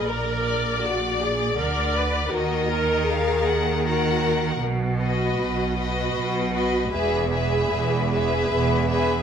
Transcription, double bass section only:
\new Staff \with { instrumentName = "Double bass section" } { \clef bass \time 3/4 \key ees \minor \tempo 4 = 78 bes,,2 d,4 | ees,2. | \key e \lydian b,,4 b,,4 b,,4 | e,,4 e,,4 e,,4 | }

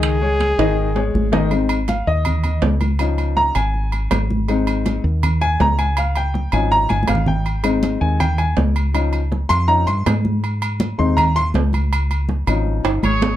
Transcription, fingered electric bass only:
\new Staff \with { instrumentName = "Fingered electric bass" } { \clef bass \time 4/4 \key aes \major \tempo 4 = 162 des,4. aes,,4. aes,,4~ | aes,,4. ees,4. des,4~ | des,4. aes,,4. aes,,4~ | aes,,4. ees,4. des,4~ |
des,4. aes,,4 g,,8 aes,,4~ | aes,,4. ees,4. des,4~ | des,4. f,4 g,8 aes,4~ | aes,4. ees,4. des,4~ |
des,4. aes,,4 g,,8 aes,,4 | }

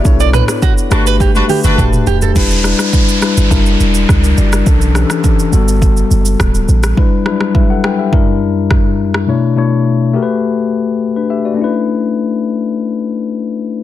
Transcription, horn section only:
\new Staff \with { instrumentName = "Horn section" } { \time 4/4 \key b \minor \tempo 4 = 104 r4. <d' fis' b'>16 r8 <d' fis' b'>16 r16 <d' fis' b'>8 r8. | r1 | r1 | r1 |
r1 | r1 | }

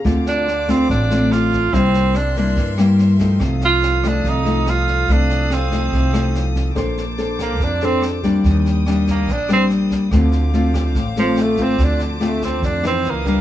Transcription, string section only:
\new Staff \with { instrumentName = "String section" } { \time 4/4 \key d \phrygian \tempo 4 = 143 << { d'''1 | c'''1 | ees'''1~ | ees'''1 |
d'''1 | ees'''1 | d'''1~ | d'''2. ees'''4 | } \\ { <c'' f''>1 | <bes' e''>1 | <a' f''>1~ | <a' f''>1 |
<c'' a''>1 | <d' g''>1 | <c'' f''>1 | <c'' a''>2. <ces'' fes''>4 | } >> }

